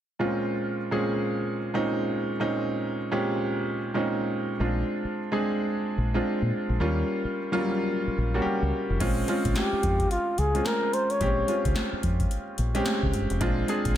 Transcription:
0.19 A#2 G#3 C4 C#4 F4
0.91 A#2 G#3 C4 C#4 G#4
1.74 A#2 G#3 C4 C#4 D#4
2.40 A#2 G#3 C4 C#4 D#4
3.11 A#2 G#3 C4 C#4 G4
3.94 A#2 G#3 C4 C#4 D#4
4.60 A#1 G#3 C4 D4 F4
5.04 muted fingered electric bass stroke
5.32 G#3 C4 D4 G#4
5.98 A#1
6.14 G#3 C4 D4 F4
6.42 A#2
6.69 A#1
6.80 D#2 G3 A#3 C#4 F4
7.24 muted fingered electric bass stroke
7.52 F#3 A#3 C#4 F4
7.58 G3
8.07 muted fingered electric bass stroke
8.18 A#1
8.34 G3 A#3 C#4 F#4
8.42 G4, muted fingered electric bass stroke
8.62 C#2
8.90 F1
9.00 A#1 G#3 C4 C#4 F4, kick, closed hi-hat, crash
9.28 G#3 C4 C#4 F4, closed hi-hat
9.45 A#1, kick, closed hi-hat
9.56 G4, snare, clap, closed hi-hat
9.72 muted fingered electric bass stroke
9.83 F2, kick, closed hi-hat
10.00 kick, closed hi-hat
10.11 F4, closed hi-hat
10.38 C#2 G#4, closed hi-hat
10.55 G#3 C4 C#4 F4, closed hi-hat
10.66 A#4, snare, clap, closed hi-hat
10.93 C5, closed hi-hat
11.10 C#5, closed hi-hat
11.20 A#1 G#3 C4 C#4 G4, kick, closed hi-hat
11.48 G#3 C4 C#4 F4, closed hi-hat
11.65 C#2, kick, closed hi-hat
11.76 snare, clap, closed hi-hat
11.93 muted fingered electric bass stroke
12.03 F2, kick, closed hi-hat
12.20 kick, closed hi-hat
12.31 closed hi-hat
12.58 A#1, closed hi-hat
12.75 G#3 C4 C#4 G4, closed hi-hat
12.86 snare, clap, closed hi-hat
13.03 C#2, kick
13.14 G1, closed hi-hat
13.30 F1, closed hi-hat
13.40 A#1 G#3 C4 D4 F4, kick, closed hi-hat
13.68 G#3 C4 D4 G#4, closed hi-hat
13.85 A#1, kick, closed hi-hat

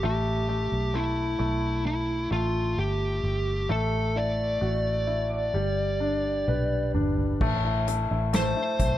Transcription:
0.03 A1 A3 G4
0.49 A3
0.72 B1
0.94 A3 E4
1.39 B1 A3
1.86 E4
2.31 A1 A3 F4
2.77 G1 G4
3.23 G1
3.69 A1 A3 A4
4.16 E4 D5
4.61 A1 F#4
5.07 E4
5.54 G1 G3
6.00 D4
6.47 B1 B4, high tom
6.94 G1 D4, mid tom
7.18 floor tom
7.41 A1 A3, kick, crash
7.64 E4
7.88 A3, closed hi-hat
8.11 A1 E4
8.33 A3 C5, snare, closed hi-hat
8.57 E4
8.79 B1 A3, kick, closed hi-hat

